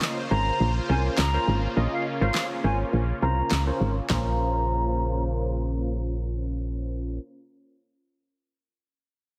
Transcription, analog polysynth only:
0.00 0.18 C#4 medium
0.00 0.18 F4 medium
0.00 0.18 A#4 medium
0.00 0.18 D#5 medium
0.31 0.71 C#4 medium
0.31 0.71 F4 medium
0.31 0.71 A#4 medium
0.31 0.71 C5 medium
0.89 1.19 C#4 medium
0.89 1.19 F4 medium
0.89 1.19 A#4 medium
0.89 1.19 C5 medium
1.34 1.63 C#4 medium
1.34 1.63 F4 medium
1.34 1.63 A#4 medium
1.34 1.63 C5 medium
1.77 2.06 C#4 medium
1.77 2.06 F4 medium
1.77 2.06 A#4 medium
1.77 2.06 D#5 medium
2.21 2.51 C#4 medium
2.21 2.51 F4 medium
2.21 2.51 A#4 medium
2.21 2.51 C5 medium
2.64 3.04 C#4 medium
2.64 3.04 F4 medium
2.64 3.04 A#4 medium
2.64 3.04 C5 medium
3.22 3.52 C#4 medium
3.22 3.52 F4 medium
3.22 3.52 A#4 medium
3.22 3.52 C5 medium
3.67 3.96 C#4 medium
3.67 3.96 F4 medium
3.67 3.96 A#4 medium
3.67 3.97 C5 medium
4.10 7.19 C#4 medium
4.10 7.19 F4 medium
4.10 7.19 A#4 medium
4.10 7.19 C5 medium

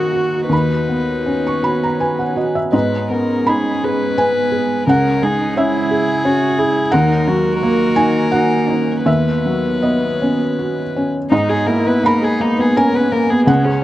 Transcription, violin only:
0.00 0.50 F#4 medium
0.51 2.48 B4 soft
2.73 3.08 B4 soft
3.11 3.50 A#4 medium
3.49 3.86 G#4 medium
3.84 4.87 B4 medium
4.88 5.25 A#4 medium
5.23 5.57 G#4 medium
5.58 6.93 G#4 medium
6.91 7.59 A#4 medium
7.59 9.02 A#4 medium
9.06 11.07 B4 soft
11.30 11.51 D#4 medium
11.49 11.68 G#4 medium
11.67 11.88 A#4 medium
11.87 12.08 B4 medium
12.06 12.25 A#4 medium
12.24 12.43 G#4 medium
12.41 12.62 D#4 medium
12.60 12.78 G#4 medium
12.77 12.97 A#4 medium
12.96 13.13 B4 medium
13.12 13.32 A#4 medium
13.30 13.45 G#4 medium
13.46 13.66 G#3 medium
13.64 13.84 C#4 medium

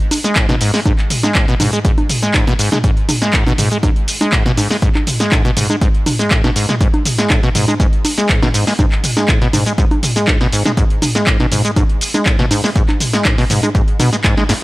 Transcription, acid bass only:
0.24 0.37 G#3 medium
0.36 0.47 G#2 medium
0.49 0.55 B2 loud
0.61 0.72 G#2 medium
0.74 0.80 G#3 medium
0.86 0.93 G#2 medium
1.23 1.37 G#3 medium
1.35 1.46 G#2 medium
1.48 1.55 B2 loud
1.60 1.71 G#2 medium
1.73 1.79 G#3 medium
1.85 1.92 G#2 medium
2.23 2.36 G#3 medium
2.34 2.45 G#2 medium
2.47 2.54 B2 loud
2.59 2.70 G#2 medium
2.72 2.79 G#3 medium
2.84 2.91 G#2 medium
3.22 3.35 G#3 medium
3.33 3.44 G#2 medium
3.47 3.53 B2 loud
3.58 3.69 G#2 medium
3.71 3.78 G#3 medium
3.83 3.90 G#2 medium
4.21 4.34 G#3 medium
4.33 4.43 G#2 medium
4.46 4.52 B2 loud
4.57 4.68 G#2 medium
4.71 4.77 G#3 medium
4.82 4.89 G#2 medium
5.20 5.33 G#3 medium
5.32 5.43 G#2 medium
5.45 5.51 B2 loud
5.57 5.67 G#2 medium
5.70 5.76 G#3 medium
5.81 5.89 G#2 medium
6.19 6.33 G#3 medium
6.31 6.42 G#2 medium
6.44 6.51 B2 loud
6.56 6.67 G#2 medium
6.69 6.75 G#3 medium
6.81 6.88 G#2 medium
7.18 7.32 G#3 medium
7.30 7.41 G#2 medium
7.43 7.50 B2 loud
7.55 7.66 G#2 medium
7.68 7.74 G#3 medium
7.80 7.87 G#2 medium
8.18 8.31 G#3 medium
8.29 8.40 G#2 medium
8.42 8.49 B2 loud
8.54 8.65 G#2 medium
8.67 8.74 G#3 medium
8.79 8.86 G#2 medium
9.17 9.30 G#3 medium
9.29 9.39 G#2 medium
9.42 9.48 B2 loud
9.53 9.64 G#2 medium
9.66 9.73 G#3 medium
9.78 9.85 G#2 medium
10.16 10.29 G#3 medium
10.28 10.38 G#2 medium
10.41 10.47 B2 loud
10.53 10.63 G#2 medium
10.66 10.72 G#3 medium
10.77 10.84 G#2 medium
11.15 11.28 G#3 medium
11.27 11.38 G#2 medium
11.40 11.46 B2 loud
11.52 11.62 G#2 medium
11.65 11.71 G#3 medium
11.76 11.84 G#2 medium
12.14 12.28 G#3 medium
12.26 12.37 G#2 medium
12.39 12.46 B2 loud
12.51 12.62 G#2 medium
12.64 12.70 G#3 medium
12.76 12.83 G#2 medium
13.13 13.27 G#3 medium
13.25 13.36 G#2 medium
13.38 13.45 B2 loud
13.50 13.61 G#2 medium
13.63 13.70 G#3 medium
13.75 13.82 G#2 medium
14.00 14.10 B2 loud
14.13 14.17 G#3 medium
14.24 14.35 G#2 loud
14.37 14.44 G#3 loud
14.49 14.54 G#2 loud

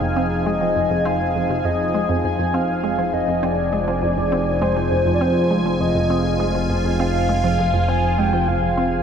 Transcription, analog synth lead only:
0.00 0.48 F5 loud
0.46 1.05 D#5 loud
1.05 1.66 F5 medium
1.65 2.09 D#5 loud
2.24 2.56 G#5 loud
2.54 3.15 F5 loud
3.13 3.45 D#5 medium
3.43 4.61 D5 loud
4.62 5.11 C5 medium
5.15 5.23 D5 medium
5.22 5.82 C5 medium
5.81 6.70 D#5 medium
6.99 7.90 F5 loud
7.89 8.20 G#5 loud
8.18 8.50 G5 loud
8.48 9.03 F5 loud

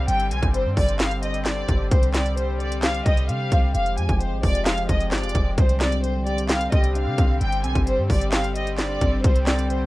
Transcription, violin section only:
0.09 0.27 G5 loud
0.32 0.51 G#5 medium
0.55 0.73 C5 medium
0.77 0.96 D5 medium
1.00 1.19 F5 medium
1.23 1.42 D#5 medium
1.46 1.89 D5 medium
1.91 2.10 C5 medium
2.15 2.34 D5 medium
2.38 2.57 C5 medium
2.60 2.79 D5 medium
2.83 3.02 F5 loud
3.07 3.25 D#5 medium
3.29 3.72 F5 medium
3.74 3.94 F5 medium
3.98 4.17 G#5 medium
4.21 4.40 C5 medium
4.44 4.63 D5 loud
4.67 4.86 F5 medium
4.89 5.08 D#5 medium
5.12 5.55 D5 loud
5.58 5.77 C5 medium
5.82 6.00 D5 medium
6.03 6.23 C5 medium
6.27 6.46 D5 medium
6.50 6.69 F5 medium
6.72 6.91 D#5 medium
6.96 7.39 F5 medium
7.41 7.60 G5 loud
7.65 7.83 G#5 medium
7.87 8.06 C5 medium
8.10 8.29 D5 medium
8.32 8.52 F5 medium
8.56 8.75 D#5 medium
8.78 9.21 D5 medium
9.24 9.43 C5 medium
9.47 9.66 D5 medium
9.71 9.86 C5 medium

